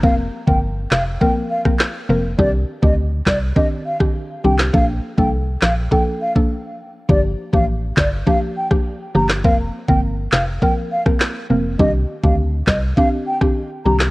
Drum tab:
CP |------x-----x---|------x--------x|------x---------|------x--------x|
SD |------o----ro---|------o----r---o|------o---------|------o----r---o|
BD |o--o----o--o----|o--o--o-o--o----|o--o----o--o----|o--o--o-o--o----|

CP |------x-----x---|------x--------x|
SD |------o----ro---|------o----r---o|
BD |o--o----o--o----|o--o--o-o--o----|